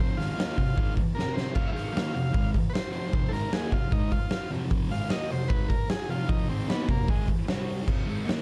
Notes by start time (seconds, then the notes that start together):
Already playing: F2 C5
0.00 C3 F3
0.17 G#2 D#3 G#3 F4, snare, open hi-hat
0.37 D#3 A#3 D#4, snare, open hi-hat
0.57 F2 C3, kick, open hi-hat
0.76 G#2 D#3 G#3, kick, open hi-hat
0.97 kick, open hi-hat
1.15 C3 G3 C4 A#4
1.19 snare
1.34 C5, snare
1.55 F2 C3 F3 F5, kick, crash
1.67 E5
1.72 G#2 D#3 G#3 F5
1.76 snare, open hi-hat
1.93 D#3 A#3 D#4, snare, open hi-hat
2.13 F2 C3, open hi-hat
2.33 G#2 D#3 G#3, kick, open hi-hat
2.54 kick, open hi-hat
2.70 B4 C5
2.74 snare, open hi-hat
2.91 F2 C3 F3 C5, open hi-hat
3.11 F2 C3 F3, kick, open hi-hat
3.29 G#2 D#3 A4, open hi-hat
3.33 G#3 A#4, snare
3.51 D#3 A#3 D#4 G#4, snare, open hi-hat
3.71 F2 C3 F4, kick, open hi-hat
3.91 G#2 D#3 G#3 D#4, kick, open hi-hat
4.11 F4, kick, open hi-hat
4.30 snare, open hi-hat
4.50 F2 C3 F3, open hi-hat
4.70 F2 C3 F3, kick, open hi-hat
4.90 G#2 D#3 G#3 F5, snare, open hi-hat
5.09 D#3 A#3 D#4 D#5, snare, open hi-hat
5.30 F2 C3 C5, open hi-hat
5.48 G#2 D#3 G#3 B4, kick, open hi-hat
5.69 A#4, kick, open hi-hat
5.88 G#4, snare, open hi-hat
6.09 F2 C3 F3 F4, open hi-hat
6.28 F2 C3 F3 D#4, kick, open hi-hat
6.49 G#2 D#3 G#3 C4, open hi-hat
6.68 D#3 A#3 B3 D#4, snare, open hi-hat
6.89 F2 C3 A#3, kick, open hi-hat
7.07 G#2 D#3 G#3, kick, open hi-hat
7.28 kick, open hi-hat
7.47 C3 G3 C4, snare, open hi-hat
7.68 open hi-hat
7.87 F2 C3 F3, kick, crash
8.07 G#2 D#3 G#3, open hi-hat
8.26 D#3 A#3 D#4, snare, open hi-hat